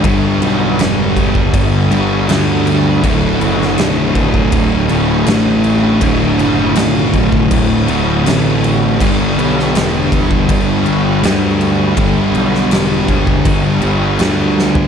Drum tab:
CC |x-x-x-x-x-x-x-x-|x-x-x-x-x-x-x-x-|x-x-x-x-x-x-x-x-|x-x-x-x-x-x-x-x-|
SD |----o-------o---|---oo-------o---|----o-------o---|---oo-------o---|
FT |----------------|----------------|----------------|----------------|
BD |o-----ooo-------|o-----ooo-------|o-----ooo-------|o-----ooo-------|

CC |x-x-x-x-x-x-x---|
SD |---oo-------o-o-|
FT |---------------o|
BD |o-----ooo-------|